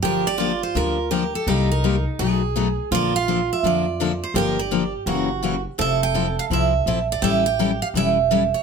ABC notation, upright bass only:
X:1
M:4/4
L:1/8
Q:"Swing" 1/4=167
K:Gdor
V:1 name="Upright bass" clef=bass
G,,,4 D,,4 | C,,4 =B,,,4 | B,,,4 F,,4 | G,,,4 ^F,,,4 |
F,,,4 C,,2 B,,,2 | A,,,4 E,,,4 |]